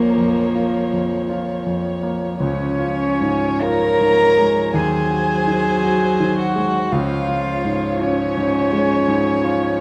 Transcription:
Already playing: A#1 F2 F3 A#3 F4 A#4 C#5
0.17 F2
0.55 F4
0.93 F2
1.29 F4
1.66 F2
2.03 A#3
2.40 C#2 F3 C#4 C#5
2.79 F4
3.21 G#2
3.61 F4 A#4 A#5
4.01 G#2
4.38 G#3
4.74 D#2 F#3 G#4 C5 G#5
5.10 F#4
5.47 D#3
5.83 F#4
6.20 D#3
6.38 F#4 F#5
6.56 G#3
6.92 C#2 F3 F4 C#5 F5
7.28 F4
7.65 G#2
8.00 C#4 F4 C#5
8.37 G#2
8.73 G#3
9.08 G#2
9.44 F4

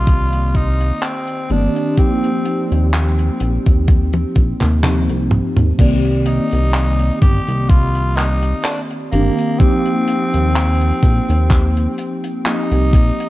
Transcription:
Already playing: C2 D#3 A#3 C4 F4 G4 D5
0.07 kick, closed hi-hat
0.33 closed hi-hat
0.55 D#4, kick, closed hi-hat
0.81 closed hi-hat
1.02 C4, clap, closed hi-hat
1.28 closed hi-hat
1.49 G1 D#3 A#3 C4 D4 G4, closed hi-hat
1.76 closed hi-hat
1.97 F3 A#3 C4 D#4 G4, kick, closed hi-hat
2.24 closed hi-hat
2.45 closed hi-hat
2.71 D#2, closed hi-hat
2.93 clap, closed hi-hat
3.19 closed hi-hat
3.40 A#1, closed hi-hat
3.66 D#2, kick, closed hi-hat
3.88 kick, closed hi-hat, high tom
4.13 closed hi-hat, high tom
4.35 A#1, kick, closed hi-hat
4.61 D#2, clap, closed hi-hat, mid tom
4.83 F3 A#3 C4 D#4 G4, clap, closed hi-hat, mid tom
5.09 C2, closed hi-hat
5.31 closed hi-hat, mid tom
5.57 D#2, closed hi-hat, mid tom
5.78 C2 D#3 A#3 C4 G4 D5, kick, closed hi-hat, crash, cabasa
6.05 closed hi-hat
6.26 D#4, closed hi-hat, cabasa
6.51 C2, closed hi-hat, cabasa
6.74 clap, closed hi-hat, cabasa
6.99 closed hi-hat
7.22 G1 G4, kick, closed hi-hat, cabasa
7.47 C2, closed hi-hat, cabasa
7.69 F4, kick, closed hi-hat, cabasa
7.95 closed hi-hat
8.16 D#4, clap, closed hi-hat, cabasa
8.43 closed hi-hat, cabasa
8.64 D4, clap, closed hi-hat, cabasa
8.91 closed hi-hat
9.12 G1 D#3 A#3 C4 D4 G4, closed hi-hat, cabasa
9.38 closed hi-hat, cabasa
9.59 F3 A#3 C4 D#4 G4, kick, closed hi-hat, cabasa
9.86 closed hi-hat
10.08 closed hi-hat, cabasa
10.34 D#2, closed hi-hat, cabasa
10.55 clap, closed hi-hat, cabasa
10.81 closed hi-hat
11.03 A#1, kick, closed hi-hat, cabasa
11.28 D#2, closed hi-hat, cabasa
11.50 kick, clap, closed hi-hat, cabasa
11.77 closed hi-hat
11.98 closed hi-hat, cabasa
12.24 closed hi-hat, cabasa
12.45 F3 A#3 C4 D#4 G4, clap, closed hi-hat, cabasa
12.71 C2, closed hi-hat
12.93 A#1, kick, closed hi-hat, cabasa
13.20 closed hi-hat, cabasa

